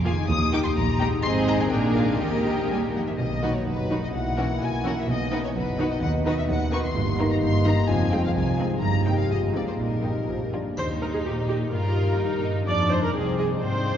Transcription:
Already playing: F1 F2 A#2 A#3 F4 G#4
0.05 A#3 F4 G#4 F5 G#5
0.11 D#3
0.15 A#3
0.20 D#4
0.24 G4
0.28 D#2 D#6
0.52 A#3 D#4 G4 G5 D6
0.64 C6
0.75 A#1 A#2 A#5
0.99 A#3 D#4 G4 G5 A#5
1.05 G#2
1.10 C4
1.14 D#4
1.19 G#1 G#4
1.23 G#2 C4 D#4 G#4 D#5 C6
1.48 A#5
1.53 A#2
1.58 A#3 G#5
1.62 D4
1.67 A#1 G#4
1.71 A#2 A#3 D4 G#4 A#4 G5
1.96 F5
2.03 D#3
2.07 A#3 F5
2.12 D#4
2.17 D#2 G4 A#4
2.21 D#3 A#3 D#4 D#5
2.70 G3 G#5
2.95 F3 F#5
3.07 D#3 E5
3.18 B1 B2 F#3 D#4 D#5
3.43 D#3 B3 D#4 F#4 B4
3.55 C#5
3.66 F#1 F#2 F#4 B4
3.90 D#3 D#4 F#4 B4
4.03 D#5
4.13 B1 B2 A#3 E4 F#5
4.37 E3 A#3 C#4 F#4 A#4
4.61 B1 B2 F#4 G#5
4.84 E3 C#4 E4 F#4 A#4 F#5
4.97 E5
5.08 B1 B2 B3 D#4 D#5
5.32 D#3 B3 D#4 F#4 B4
5.43 C#5
5.55 F#1 F#2 F#4 B4
5.79 D#3 D#4 F#4 B4
5.91 D#5
6.02 D#2 D#3 F#5
6.26 D#3 D#4 F#4 B4 D#5
6.38 E5
6.48 D#2 B4 F#5
6.72 D#3 D#4 F#4 B4 C#6
6.83 C6
6.95 G1 G2 A#3 D#4
7.19 D#3 A#3 D#4 A#4
7.30 A#5
7.41 G1 G2 G4 C6
7.65 D#3 D#4 A#4 A#5
7.88 F1 F2 C4 F4 G#5
8.12 G#3 C4 F4 G#4 G5
8.25 F5
8.35 C2 G#4 G#5
8.59 G#3 C4 F4 G#4
8.82 G1 G2 A#3 D#4 A#5
9.06 D#3 A#3 D#4 G4 G5
9.18 F5
9.30 G#1 G#2 G#3 F4 D#5
9.55 D#3 C4 D#4 F4 D5
9.68 C5
9.79 A#1 A#2 G3 D#4 A#4
10.04 D#3 A#3 D#4 G4
10.28 A#1 A#2 F3
10.53 F3 G3 A#3 D4 F4
10.76 D#2 D#3 D#4 C5, triangle
10.92 G4
11.01 A#4 D#5
11.09 A#3
11.14 G#4
11.25 A#2 G4
11.41 D#4
11.48 G4 D#5
11.56 G4
11.71 G2 F4 A#4
11.87 D#4
11.96 D#5
12.03 G3
12.19 G2 D#4
12.35 A#3
12.44 D#5
12.51 D#4
12.67 F2 D4 D5
12.83 D#4
12.90 C5 D#5
12.99 C3
13.03 A#4
13.14 C2 C4 D#4 G#4
13.31 C4
13.38 G#4 D#5
13.46 D#4
13.62 G#2 C4 C5
13.77 F4
13.85 F5
13.93 G#3

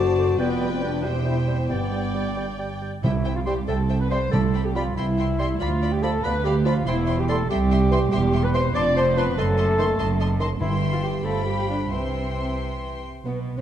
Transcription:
Already playing: F#1 F#2 F#4 C5 D5 A5
0.18 A3 C5 D5
0.39 F1 F2 G3 B3 B4 D5 G5
0.60 G3 D5 G5
0.72 C4
0.81 G3 D4 D5 G5
1.03 E1 E2 G3 G4 C5 E5 G5
1.25 G3 E4 C5 G5
1.47 G3 C4 C5 G5
1.69 G1 G2 G3 B3 D5 G5
1.92 G3 D5 G5
2.14 G3 D5 G5
2.36 G3 D5 G5
2.58 G3 D5 G5
2.81 G3 D5 G5
3.03 C2 C3 E3 E4 C5 E5 G5
3.25 C5 E5 G5
3.36 F3 F4 F5
3.46 G3 G4 C5 E5 G5 C6
3.68 C2 A3 A4 C5 E5 G5 A5
3.89 C5 E5 G5
4.01 B3 B4 B5
4.10 G3 C4 C5 E5 G5 C6
4.31 C2 C3 A3 A4 D5 G5 A5 B5
4.54 D5 G5 B5
4.65 G3 G4 G5
4.74 F3 G3 F4 D5 F5 G5 B5
4.97 C2 E3 E4 E5 G5 C6
5.19 E5 G5 C6
5.39 G3 E5 G5 C6
5.60 D2 F3 F4 D5 F5 B5
5.82 D5 F5 B5
5.92 G3 G4 G5
6.02 F3 A3 A4 D5 F5 A5 B5
6.23 D2 B3 B4 D5 F5 B5
6.45 G3 G4 D5 F5 G5 B5
6.65 F3 F4 D5 F5 B5
6.87 E1 E2 E3 E4 C5 E5 G5 C6
7.08 C5 G5 C6
7.19 G3 G4 G5
7.29 G3 A3 A4 C5 G5 A5 C6
7.49 C2 G3 G4 E5 G5 C6
7.71 E5 G5 C6
7.91 E3 E5 G5 C6
8.12 E1 E2 G3 G4 E5 G5 C6
8.33 E5 G5 C6
8.43 B3 B4 B5
8.54 E3 C4 C5 E5 G5 C6
8.75 F1 F2 D4 D5 A5 C6 D6
8.96 C4 C5 D5 A5 C6
9.17 F3 B3 B4 D5 A5 B5 C6
9.37 F#1 F#2 A3 A4 D#5 A5 C6
9.58 D#5 A5 C6
9.79 D#3 D#5 A5 C6
9.99 F#1 F#2 D#5 A5 C6
10.20 D#5 A5 C6
10.40 D#3 D#5 A5 C6
10.60 G1 G2 E3 E4 E5 G5 C6
10.93 F3 F4 F5
11.02 G3 G4 G5
11.24 G1 G2 F3 A3 A4 F5 G5 A5 B5
11.47 G3 G4 G5
11.69 D3 D4 D5
11.91 C2 C3 E3 C4 C5 E5 G5 C6
13.25 B1 B2 B3
13.57 C3 C4

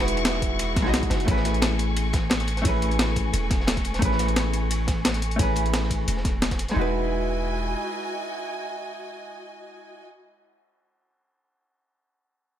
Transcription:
Already playing: E1 G#3 D#4 E4 F#4 G#4 B4 F#5 C#6
0.00 snare, ride
0.08 closed hi-hat
0.17 closed hi-hat, ride
0.25 snare, closed hi-hat, ride
0.35 snare
0.42 kick, closed hi-hat
0.59 closed hi-hat, ride
0.76 B1, kick, snare, closed hi-hat, ride
0.82 G#3 D#4 E4, snare
0.87 F#4 D#5
0.93 snare, closed hi-hat, ride
1.03 kick, closed hi-hat
1.10 F#1, snare, closed hi-hat, ride
1.20 closed hi-hat
1.25 A1 A3 C#4 E4 G#5 C#6, kick, closed hi-hat, ride
1.30 G#4 B4
1.37 snare
1.45 snare, closed hi-hat, ride
1.54 closed hi-hat
1.62 snare, closed hi-hat, ride
1.79 closed hi-hat, ride
1.97 closed hi-hat, ride
2.13 kick, snare, closed hi-hat, ride
2.30 snare, closed hi-hat, ride
2.40 snare, closed hi-hat
2.47 closed hi-hat, ride
2.57 snare, closed hi-hat
2.62 A1 A3 C#4 E4, kick, closed hi-hat, ride
2.67 G#4 B4
2.82 closed hi-hat, ride
2.91 closed hi-hat
2.99 snare, closed hi-hat, ride
3.08 snare
3.16 kick, closed hi-hat, ride
3.33 E1, closed hi-hat, ride
3.51 kick, snare, closed hi-hat, ride
3.61 snare
3.67 snare, closed hi-hat, ride
3.77 kick, closed hi-hat
3.84 closed hi-hat, ride
3.94 snare, closed hi-hat
3.99 A1 A3 C#4 E4, kick, closed hi-hat, ride
4.04 G#4 B4
4.11 snare
4.19 snare, closed hi-hat, ride
4.28 closed hi-hat
4.36 snare, closed hi-hat, ride
4.53 closed hi-hat, ride
4.71 closed hi-hat, ride
4.87 kick, snare, closed hi-hat, ride
5.05 snare, closed hi-hat, ride
5.13 snare, closed hi-hat
5.22 closed hi-hat
5.31 closed hi-hat
5.36 A1 A3 C#4 E4, kick, closed hi-hat, ride
5.41 G#4 B4
5.56 closed hi-hat, ride
5.66 closed hi-hat
5.73 snare, closed hi-hat, ride
5.83 snare
5.91 kick, closed hi-hat, ride
6.08 E1, closed hi-hat, ride
6.17 snare
6.25 kick, snare, closed hi-hat
6.42 snare, closed hi-hat
6.51 kick, snare, closed hi-hat, ride
6.59 closed hi-hat, ride
6.68 G#3, snare, closed hi-hat
6.74 E1 D#4 E4 F#4 D#5 G#5
6.79 F#4 B4

